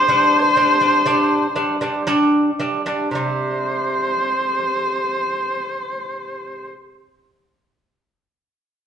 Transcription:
Already playing: horsehead fiddle C5
0.08 lute G3 D4
0.56 lute G3 D4
0.81 lute G3 D4
1.06 lute G3 D4
1.55 lute G3 D4
1.81 lute G3 D4
2.07 lute G3 D4
2.59 lute G3 D4
2.86 lute G3 D4
3.11 lute C3 G3, horsehead fiddle C5

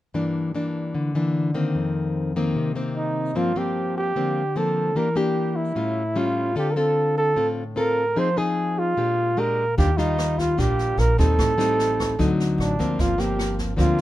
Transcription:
0.14 nylon-string guitar G2 E3 A#3 D4
0.55 nylon-string guitar E3 A#3 D4
0.94 nylon-string guitar D3
1.15 nylon-string guitar E3 A#3 D4
1.54 nylon-string guitar D#3 A#3 C4
1.75 nylon-string guitar F2
2.36 nylon-string guitar D#3 A#3 C4
2.56 nylon-string guitar C3
2.75 nylon-string guitar D#3 A#3 C4
2.96 flugelhorn D#4
3.35 nylon-string guitar G2 F3 A#3 C4, flugelhorn F4
3.56 nylon-string guitar F3 A#3 C4, flugelhorn G4
3.97 flugelhorn G4
4.16 nylon-string guitar D3 F3 A#3 C4
4.56 nylon-string guitar F3 A#3 C4, flugelhorn A4
4.95 nylon-string guitar E3 A#3 D4 G4, flugelhorn A#4
5.16 nylon-string guitar A#3 D4 G4, flugelhorn G4
5.56 flugelhorn E4
5.75 nylon-string guitar A2 G3 C#4 F4
6.16 nylon-string guitar G3 C#4 F4, flugelhorn F4
6.56 nylon-string guitar D3 C4 F4 A4, flugelhorn G4
6.71 flugelhorn A#4
6.76 nylon-string guitar C4 F4 A4, flugelhorn A4
7.18 flugelhorn A4
7.36 nylon-string guitar A2 C4 F4 A4
7.76 nylon-string guitar C4 F4 A4, flugelhorn A#4
8.16 nylon-string guitar F3 C4 D#4 G#4, flugelhorn C5
8.36 nylon-string guitar C4 D#4 G#4, flugelhorn G#4
8.79 flugelhorn F4
8.97 nylon-string guitar A#2 G#3 D4 G4
9.37 nylon-string guitar G#3 D4 G4, flugelhorn A#4
9.78 upright bass D#2, nylon-string guitar D#3 G3 D4 F4, flugelhorn G4, kick, snare
9.97 nylon-string guitar G3 F4, flugelhorn D#4, snare
10.18 cross-stick, snare
10.39 flugelhorn F4, kick, snare
10.57 upright bass A#1, nylon-string guitar A#2 G3 D4 F4, flugelhorn G4, kick, snare
10.79 snare
10.97 upright bass A#1, flugelhorn A#4, cross-stick, snare
11.18 upright bass D#2, nylon-string guitar G3 C4 D#4, flugelhorn A4, kick, snare
11.38 upright bass A1, nylon-string guitar A2, kick, cross-stick, snare
11.58 nylon-string guitar G3 C4 D#4, snare
11.79 snare
11.99 kick, cross-stick, snare
12.19 upright bass D2, nylon-string guitar D3 F#3 C4 D#4, kick, snare
12.40 snare
12.58 upright bass A1, flugelhorn D4, cross-stick, snare
12.79 upright bass D2, nylon-string guitar F3 A#3 C4, kick, snare
12.98 upright bass G1, nylon-string guitar G2, flugelhorn F4, kick, snare
13.18 nylon-string guitar F3 A#3 C4, flugelhorn G4, snare
13.39 cross-stick, snare
13.59 kick, snare
13.77 upright bass D2, nylon-string guitar D3 F3 A#3 C4, flugelhorn F4, kick, snare

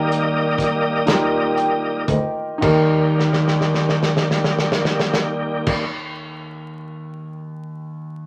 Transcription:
Already playing: grand piano D#3 D#4 G4 A#4, tonewheel organ G3 A#3 D#4 G4 A#4 D#5
0.12 closed hi-hat
0.58 kick, snare, closed hi-hat
1.06 grand piano D#4 F4 A#4, snare, closed hi-hat
1.13 grand piano G4
1.56 tonewheel organ G3 A#3 D#4, grand piano G5, closed hi-hat
2.08 double bass D2, grand piano D#5, kick, closed hi-hat
2.58 grand piano D#2 D#4 G4, double bass D#2, tonewheel organ D#3 G3
2.62 tonewheel organ A#3 G4, grand piano A#4, kick, crash
3.19 snare
3.33 snare
3.48 snare
3.61 snare
3.74 snare
3.89 snare
4.03 snare
4.17 snare
4.31 snare
4.44 snare
4.59 snare
4.72 snare
4.85 snare
4.99 snare
5.14 snare
5.67 kick, crash

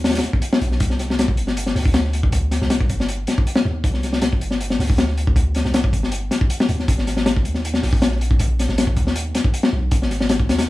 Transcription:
Already playing: 808-style bass D#2
0.04 snare, closed hi-hat
0.10 snare, closed hi-hat
0.14 snare, closed hi-hat
0.18 snare, closed hi-hat
0.23 snare, closed hi-hat
0.33 kick
0.42 closed hi-hat
0.53 snare
0.61 808-style bass A#1, closed hi-hat
0.71 808-style bass B1, snare
0.80 808-style bass C2, kick, closed hi-hat
0.90 snare
0.99 snare, closed hi-hat
1.10 snare
1.19 snare, closed hi-hat
1.28 kick
1.37 808-style bass G1, closed hi-hat
1.47 snare
1.57 closed hi-hat
1.66 snare
1.75 808-style bass D2, snare, open hi-hat
1.85 kick
1.94 snare, closed hi-hat
2.05 snare
2.13 closed hi-hat
2.23 kick
2.32 kick, closed hi-hat
2.51 snare, closed hi-hat
2.62 808-style bass C2, snare
2.70 snare, closed hi-hat
2.81 kick
2.89 808-style bass G1, kick, closed hi-hat
3.00 snare
3.09 closed hi-hat
3.27 snare, closed hi-hat
3.38 kick
3.47 closed hi-hat
3.56 snare
3.65 808-style bass D#2
3.84 808-style bass C2, kick, closed hi-hat
3.94 snare
4.03 snare, closed hi-hat
4.13 snare
4.22 snare, closed hi-hat
4.33 kick
4.41 808-style bass G1, closed hi-hat
4.51 snare
4.61 closed hi-hat
4.70 snare
4.79 808-style bass D2, snare, open hi-hat
4.90 kick
4.98 snare, closed hi-hat
5.07 snare
5.17 closed hi-hat
5.27 kick
5.36 kick, closed hi-hat
5.55 snare, closed hi-hat
5.65 808-style bass C2, snare
5.74 snare, closed hi-hat
5.84 kick
5.93 808-style bass G1, kick, closed hi-hat
6.03 snare
6.12 closed hi-hat
6.31 snare, closed hi-hat
6.41 kick
6.50 closed hi-hat
6.60 snare
6.69 808-style bass D#2, closed hi-hat
6.79 snare
6.88 808-style bass G#1, kick, closed hi-hat
6.98 snare
7.07 snare, closed hi-hat
7.17 snare
7.26 snare, closed hi-hat
7.36 kick
7.45 808-style bass D#2, closed hi-hat
7.54 snare
7.65 closed hi-hat
7.74 snare
7.82 808-style bass A#1, snare, open hi-hat
7.93 kick
8.02 snare, closed hi-hat
8.11 snare
8.21 closed hi-hat
8.31 kick
8.39 kick, closed hi-hat
8.59 snare, closed hi-hat
8.69 808-style bass G#1, snare
8.78 snare, closed hi-hat
8.87 kick
8.96 808-style bass D#2, kick, closed hi-hat
9.07 snare
9.16 closed hi-hat
9.35 snare, closed hi-hat
9.44 kick
9.54 closed hi-hat
9.63 snare
9.73 808-style bass B1
9.91 808-style bass G#1, kick, closed hi-hat
10.02 snare
10.11 snare, closed hi-hat
10.20 snare
10.29 snare, closed hi-hat
10.40 kick
10.49 808-style bass D#2, snare, closed hi-hat
10.58 snare, closed hi-hat

